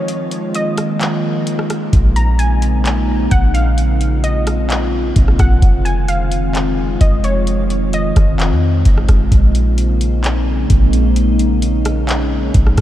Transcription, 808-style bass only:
1.93 3.28 A#1 loud
3.32 5.12 A#1 loud
5.16 5.38 A#1 loud
5.39 5.62 A#1 loud
5.62 6.97 F1 loud
7.01 8.12 F1 loud
8.16 8.52 F1 loud
8.51 8.84 F2 medium
8.86 9.08 F1 loud
9.09 9.31 F1 loud
9.32 10.66 A#1 loud
10.70 12.51 A#1 loud
12.55 12.77 A#1 loud
12.78 12.81 A#1 loud

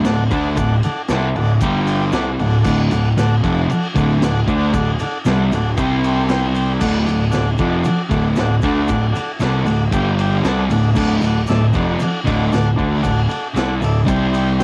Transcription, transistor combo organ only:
0.05 0.24 A4 loud
0.05 0.24 D5 loud
0.05 0.24 F#5 loud
0.31 0.50 A4 medium
0.31 0.50 D5 medium
0.31 0.50 F#5 loud
0.56 0.75 A4 loud
0.56 0.76 D5 loud
0.56 0.76 F#5 loud
0.84 1.02 A4 medium
0.84 1.03 D5 medium
0.84 1.02 F#5 medium
1.09 1.28 A4 loud
1.09 1.28 D5 loud
1.09 1.29 F#5 loud
1.35 1.54 A4 medium
1.35 1.54 D5 medium
1.35 1.54 F#5 loud
1.62 1.80 G4 medium
1.62 1.80 D5 medium
1.62 1.80 G5 medium
1.86 2.05 G4 medium
1.86 2.06 D5 medium
1.86 2.06 G5 medium
2.12 2.31 A4 loud
2.12 2.32 D5 loud
2.12 2.32 F#5 loud
2.39 2.58 A4 medium
2.39 2.58 D5 medium
2.39 2.58 F#5 medium
2.61 2.82 A4 loud
2.61 2.83 D5 loud
2.61 2.83 F#5 loud
2.90 3.09 A4 medium
2.90 3.09 D5 medium
2.90 3.10 F#5 medium
3.18 3.36 A4 loud
3.18 3.36 D5 loud
3.18 3.36 F#5 loud
3.43 3.61 A4 medium
3.43 3.61 D5 medium
3.43 3.62 F#5 medium
3.69 3.87 A4 medium
3.69 3.88 D5 medium
3.69 3.88 F#5 loud
3.96 4.14 A4 medium
3.96 4.14 D5 medium
3.96 4.15 F#5 medium
4.24 4.41 A4 loud
4.24 4.41 D5 loud
4.24 4.41 F#5 loud
4.49 4.66 A4 loud
4.49 4.66 D5 medium
4.49 4.67 F#5 loud
4.73 4.91 A4 loud
4.73 4.92 D5 loud
4.73 4.92 F#5 loud
5.01 5.18 A4 medium
5.01 5.18 D5 medium
5.01 5.19 F#5 loud
5.27 5.44 A4 loud
5.27 5.44 D5 medium
5.27 5.45 F#5 loud
5.54 5.71 A4 medium
5.54 5.71 D5 medium
5.54 5.71 F#5 medium
5.79 5.96 G4 medium
5.79 5.97 C5 medium
5.79 5.96 G5 loud
6.07 6.23 G4 medium
6.07 6.23 C5 medium
6.07 6.24 G5 medium
6.30 6.48 G4 loud
6.30 6.48 C5 loud
6.30 6.48 G5 loud
6.54 6.73 G4 medium
6.54 6.73 C5 medium
6.54 6.73 G5 medium
6.80 6.99 A4 loud
6.80 6.99 D5 loud
6.80 6.99 F#5 loud
7.06 7.25 A4 medium
7.06 7.25 D5 medium
7.06 7.25 F#5 medium
7.31 7.50 A4 loud
7.31 7.50 D5 loud
7.31 7.50 F#5 loud
7.59 7.77 A4 medium
7.59 7.77 D5 medium
7.59 7.78 F#5 loud
7.82 8.02 A4 medium
7.82 8.03 D5 medium
7.82 8.02 F#5 medium
8.10 8.29 A4 medium
8.10 8.29 D5 medium
8.10 8.29 F#5 loud
8.38 8.56 A4 loud
8.38 8.56 D5 loud
8.38 8.57 F#5 loud
8.62 8.81 A4 medium
8.62 8.82 D5 medium
8.62 8.82 F#5 loud
8.87 9.06 A4 loud
8.87 9.07 D5 loud
8.87 9.07 F#5 loud
9.12 9.32 A4 medium
9.12 9.32 D5 medium
9.12 9.32 F#5 medium
9.42 9.60 A4 loud
9.42 9.60 D5 loud
9.42 9.60 F#5 loud
9.65 9.84 A4 medium
9.65 9.84 D5 medium
9.65 9.84 F#5 medium
9.92 10.11 G4 medium
9.92 10.11 D5 medium
9.92 10.12 G5 loud
10.20 10.38 G4 medium
10.20 10.38 D5 medium
10.20 10.38 G5 loud
10.46 10.64 A4 loud
10.46 10.64 D5 loud
10.46 10.65 F#5 loud
10.72 10.90 A4 medium
10.72 10.90 D5 medium
10.72 10.90 F#5 loud
10.97 11.15 A4 loud
10.97 11.15 D5 loud
10.97 11.16 F#5 loud
11.24 11.42 A4 medium
11.24 11.43 D5 medium
11.24 11.43 F#5 loud
11.48 11.67 A4 loud
11.48 11.66 D5 loud
11.48 11.67 E5 loud
11.75 11.93 A4 medium
11.75 11.93 D5 medium
11.75 11.94 F#5 medium
12.03 12.20 A4 medium
12.03 12.20 D5 medium
12.03 12.20 F#5 loud
12.27 12.45 A4 medium
12.27 12.45 D5 medium
12.27 12.46 F#5 medium
12.52 12.71 A4 loud
12.52 12.71 D5 loud
12.52 12.72 F#5 loud
12.76 12.96 A4 medium
12.76 12.95 D5 medium
12.76 12.97 F#5 loud
13.02 13.22 A4 loud
13.02 13.22 D5 loud
13.02 13.22 F#5 loud
13.28 13.48 A4 medium
13.28 13.48 D5 medium
13.28 13.48 F#5 medium
13.57 13.75 A4 loud
13.57 13.75 D5 loud
13.57 13.76 F#5 loud
13.83 14.01 A4 medium
13.83 14.02 D5 medium
13.83 14.02 E5 loud
14.08 14.27 G4 medium
14.08 14.27 C5 medium
14.08 14.27 G5 loud
14.31 14.51 G4 medium
14.31 14.52 C5 medium
14.31 14.52 G5 medium
14.59 14.64 G4 loud
14.59 14.64 C5 loud
14.59 14.64 G5 loud

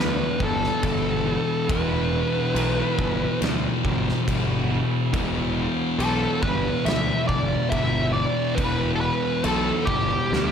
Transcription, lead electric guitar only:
0.00 0.43 B4 medium
0.42 1.71 A4 medium
1.71 3.39 B4 medium
6.00 6.42 A4 loud
6.43 6.83 B4 medium
6.85 7.27 E5 medium
7.28 7.70 D5 loud
7.70 8.12 E5 medium
8.13 8.59 D5 medium
8.55 8.90 B4 medium
8.96 9.01 A4 medium
9.01 9.45 B4 medium
9.45 9.89 A4 medium
9.85 10.52 G4 medium

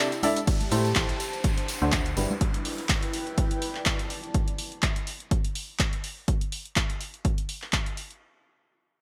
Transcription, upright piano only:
0.23 0.36 D4 loud
0.23 0.36 E4 medium
0.23 0.36 A4 medium
0.23 0.36 E5 loud
0.72 0.84 A3 medium
0.72 0.84 E4 medium
0.72 0.84 G4 medium
0.72 0.84 A4 medium
0.72 0.84 C5 medium
0.96 1.15 E4 medium
0.96 1.15 G4 medium
0.96 1.15 A4 medium
0.96 1.15 C5 medium
1.82 2.14 D3 medium
1.82 2.14 D4 medium
1.82 2.14 F#4 medium
1.82 2.14 A4 medium
1.82 2.14 C5 medium
2.17 2.30 G3 medium
2.17 2.30 D4 medium
2.17 2.30 E4 medium
2.17 2.30 G4 medium
2.17 2.30 B4 medium

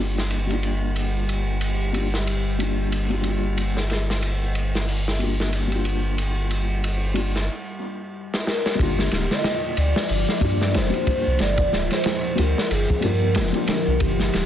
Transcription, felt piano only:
0.00 0.45 G3 medium
0.00 0.45 A#3 medium
0.00 0.46 D4 medium
0.00 0.46 F4 medium
0.46 1.89 G3 medium
0.46 1.90 A#3 medium
0.51 1.92 D4 medium
0.51 1.93 F4 medium
1.93 2.04 G3 medium
1.93 2.05 A#3 medium
1.93 2.06 D4 medium
1.93 2.06 F4 medium
2.58 3.06 G3 medium
2.58 3.06 A#3 medium
2.58 3.07 D4 medium
2.58 3.08 F4 medium
3.10 3.20 G3 medium
3.10 3.21 A#3 medium
3.10 3.22 D4 medium
3.10 3.23 F4 loud
3.22 5.16 G3 medium
3.22 5.17 A#3 medium
3.27 5.18 D4 medium
3.27 5.19 F4 medium
5.19 5.66 G3 medium
5.19 5.67 A#3 medium
5.19 5.68 D4 medium
5.19 5.68 F4 medium
5.67 7.10 G3 medium
5.67 7.12 A#3 medium
5.73 7.13 D4 medium
5.73 7.14 F4 medium
7.14 7.26 G3 medium
7.14 7.26 A#3 medium
7.14 7.27 D4 medium
7.14 7.27 F4 medium
8.75 9.75 G3 medium
8.75 9.76 A#3 medium
8.79 9.77 D3 medium
8.79 9.78 F4 loud
10.40 10.88 G3 medium
10.40 10.89 A#3 medium
10.40 10.89 D4 medium
10.40 10.90 F4 medium
10.90 12.32 G3 medium
10.90 12.33 A#3 medium
10.94 12.35 D4 medium
10.94 12.36 F4 medium
12.35 12.47 G3 medium
12.35 12.48 A#3 medium
12.35 12.49 D4 medium
12.35 12.49 F4 medium
13.00 13.49 G3 medium
13.00 13.49 A#3 medium
13.00 13.50 D4 medium
13.04 13.51 F4 medium
13.52 13.63 G3 loud
13.52 13.64 A#3 medium
13.52 13.65 D4 medium
13.52 13.66 F4 loud
13.64 14.46 G3 medium
13.69 14.46 D3 medium
13.69 14.46 F4 medium

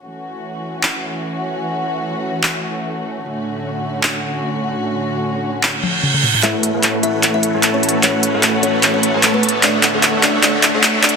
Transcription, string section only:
0.03 3.20 E3 medium
0.03 6.39 A3 medium
0.03 3.20 C#4 medium
0.03 3.20 F#4 medium
3.23 6.40 A2 medium
3.23 6.40 D3 medium
3.23 6.40 C#4 medium
3.23 6.40 F#4 medium
6.43 9.60 E3 medium
6.43 11.16 A3 medium
6.43 11.16 C#4 medium
6.43 11.16 F#4 medium
9.63 11.16 A2 medium
9.63 11.16 D3 medium

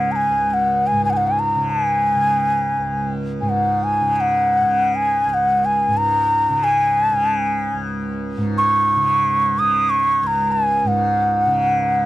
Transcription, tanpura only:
0.00 0.29 C#2 medium
0.00 0.91 G#2 soft
0.00 1.56 C#3 medium
0.29 2.77 C#2 medium
0.92 3.41 G#2 medium
1.56 2.15 C#3 medium
2.15 4.01 C#3 soft
2.78 5.26 C#2 medium
3.41 5.87 G#2 soft
4.01 4.63 C#3 medium
4.63 6.50 C#3 medium
5.26 7.73 C#2 medium
5.88 8.37 G#2 medium
6.50 7.12 C#3 medium
7.12 8.96 C#3 medium
7.74 10.22 C#2 medium
8.37 10.84 G#2 medium
8.96 9.59 C#3 medium
9.59 11.47 C#3 medium
10.22 12.06 C#2 medium
10.84 12.06 G#2 medium
11.47 12.06 C#3 medium

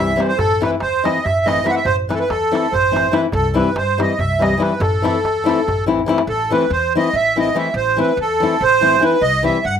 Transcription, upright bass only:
0.00 0.14 C2 medium
0.38 0.64 A1 medium
0.82 1.08 E2 medium
1.25 1.61 A1 medium
1.85 2.11 A1 medium
2.30 2.56 E2 medium
2.72 3.08 A1 medium
3.33 3.59 C2 loud
3.76 4.02 G2 medium
4.19 4.55 C2 medium
4.80 5.06 A1 medium
5.24 5.50 E2 medium
5.68 6.04 A1 medium
6.27 6.53 A1 medium
6.70 6.96 E2 medium
7.13 7.50 A1 medium
7.74 8.00 A1 medium
8.17 8.43 E2 medium
8.61 8.97 A1 medium
9.21 9.47 C2 medium
9.65 9.80 G2 medium

